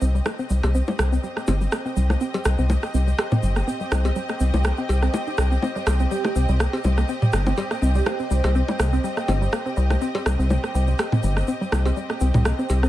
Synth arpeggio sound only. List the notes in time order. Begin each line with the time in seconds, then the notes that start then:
0.02 C4
0.15 G3
0.26 A#3
0.39 C4
0.50 G3
0.64 A#3
0.75 C4
0.88 G3
0.99 A#3
1.12 C4
1.24 G3
1.37 A#3
1.48 C4
1.61 G3
1.72 A#3
1.85 C4
1.97 G3
2.10 A#3
2.21 C4
2.34 G3
2.45 A#3
2.59 C4
2.70 G3
2.83 A#3
2.94 C4
3.07 G3
3.19 A#3
3.32 C4
3.43 G3
3.56 A#3
3.67 C4
3.81 G3
3.92 A#3
4.05 C4
4.16 G3
4.29 A#3
4.41 C4
4.54 G3
4.65 A#3
4.78 C4
5.03 C4
5.14 G4
5.27 D#4
5.38 G3
5.51 C4
5.63 C4
5.76 G3
5.87 A#3
6.00 C4
6.11 G3
6.25 A#3
6.36 C4
6.49 G3
6.60 A#3
6.73 C4
6.84 G3
6.98 A#3
7.09 C4
7.22 G3
7.33 A#3
7.47 C4
7.58 G3
7.71 A#3
7.82 C4
7.95 G3
8.06 A#3
8.20 C4
8.31 G3
8.44 A#3
8.55 C4
8.68 G3
8.80 A#3
8.93 C4
9.04 G3
9.17 A#3
9.28 C4
9.42 G3
9.53 A#3
9.66 C4
9.77 G3
9.90 A#3
10.02 C4
10.15 G3
10.26 A#3
10.39 C4
10.50 G3
10.64 A#3
10.75 C4
10.88 G3
10.99 A#3
11.12 C4
11.24 G3
11.37 A#3
11.48 C4
11.61 G3
11.72 A#3
11.86 C4
11.97 G3
12.10 A#3
12.21 C4
12.34 G3
12.46 A#3
12.59 C4
12.83 C4